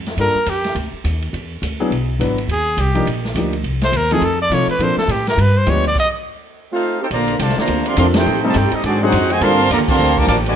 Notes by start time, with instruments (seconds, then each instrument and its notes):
Already playing: upright bass F2
0.06 snare, ride
0.17 upright bass G2, grand piano G3 A#3 D4 F4 A4, trumpet A#4, ride
0.35 muted upright bass stroke
0.46 upright bass F2, trumpet G4, hi-hat pedal, ride
0.64 snare, ride
0.75 upright bass D2, ride
0.93 muted upright bass stroke
1.04 upright bass D#2, hi-hat pedal, ride
1.22 ride
1.33 upright bass E2, ride
1.62 upright bass D2, hi-hat pedal, ride
1.80 grand piano F#3 B3 D4 E4 G#4
1.91 upright bass B1, ride
2.19 upright bass G#1, grand piano F#3 B3 D4 E4 B4, hi-hat pedal, ride
2.38 ride
2.47 upright bass D#2, ride
2.52 trumpet G#4
2.77 upright bass C2, trumpet G4, hi-hat pedal, ride
2.95 grand piano F3 A#3 D4 D#4 G4, ride
3.06 upright bass A#1, ride
3.25 snare
3.35 upright bass D2, grand piano F3 A#3 D4 D#4 G4, hi-hat pedal, ride
3.53 ride
3.64 upright bass C2, ride
3.81 trumpet C5, snare, ride
3.92 upright bass D#2, hi-hat pedal, ride
3.97 trumpet A#4
4.11 grand piano F3 A3 C4 D#4 A4, trumpet G#4, ride
4.21 upright bass F2, trumpet A4, ride
4.42 trumpet D5
4.50 upright bass C3, grand piano F3 A3 C4 D#4 F4, trumpet C#5, hi-hat pedal, ride
4.67 trumpet B4, muted upright bass stroke, ride
4.79 upright bass A#2, grand piano F3 A#3 C4 D4 A4, ride
4.83 trumpet C5
4.97 trumpet A4, muted upright bass stroke, snare
5.08 upright bass A2, trumpet G4, hi-hat pedal, ride
5.27 trumpet A#4, snare, ride
5.37 upright bass G2, trumpet B4, ride
5.58 trumpet C5
5.67 upright bass D2, grand piano F3 G#3 B3 D4 G4, trumpet C#5, hi-hat pedal, ride
5.84 trumpet D5, ride
5.95 kick, crash
6.00 trumpet D#5
6.71 trombone section A3 C4 F4, trumpet section D#4 A4 C5 F5
7.01 trombone section C4 D#4 G4, trumpet section D#4 A4 C5 G5
7.11 upright bass A#1, trombone section C3 D3 F3 A3 A#3 D4, trumpet section F4 C5 D5 A#5, ride
7.28 ride
7.39 upright bass C2, trombone section D3 F3 A3, trumpet section F4 C5 D5 G5 A5, hi-hat pedal, ride
7.49 snare
7.57 trombone section D3 F3 A#3, trumpet section F4 C5 D5 A#5, muted upright bass stroke, snare
7.67 upright bass D2, ride
7.85 trombone section F3 A3 C4, trumpet section A4 D5 F5 C6, ride
7.96 upright bass F2, trombone section F3 A3 C4, grand piano F3 A#3 C4 D4 A4, trumpet section A4 D5 F5 C6, hi-hat pedal, ride
8.13 trombone section C4 D#4 G4, snare, ride
8.18 trumpet section D#4 A4 C5 G5
8.26 upright bass A2, trombone section G3 D#4
8.44 trombone section C3 D#3 A3, grand piano G3 A3 C4 D#4 A4, trumpet section G4 C5 D#5 A5
8.54 upright bass G2, trombone section C4 D#4 G4, trumpet section D#4 A4 C5 G5, hi-hat pedal, ride
8.72 trombone section G3 C4 D#4, trumpet section C4 G4 A4 D#5, muted upright bass stroke, ride
8.83 upright bass G#2, trombone section D3 D#3 F#3 G#3 C4 D4 F#4, trumpet section C4 F#4 G#4 D5, ride
9.02 grand piano F#3 C4 D4 D#4 G#4, trombone section C4 D#4 F#4, trumpet section D#4 G#4 C5 F#5
9.12 upright bass F2, hi-hat pedal, ride
9.30 trombone section C3 D#3 G#3, trumpet section F#4 C5 D#5 G#5, ride
9.41 upright bass G2, trombone section D3 F3 A3 A#3 C4 G4, grand piano G3 A#3 D4 F4 A4, trumpet section A#4 F5 A5 C6, ride
9.70 upright bass D#2, trombone section D3 F3 A#3, trumpet section F4 A4 D5 A#5, hi-hat pedal, ride
9.88 trombone section D3 F3 C4, trumpet section A#4 F5 A5 C6, kick, crash
9.99 upright bass D2
10.17 trombone section F3 A#3 D4, trumpet section A#4 F5 A5 D6, kick
10.27 upright bass A1, trombone section F3 A#3 D4, trumpet section A#4 F5 A5 D6, hi-hat pedal, ride
10.46 trombone section B2 D3 G#3, trumpet section F#4 B4 D5 G#5, ride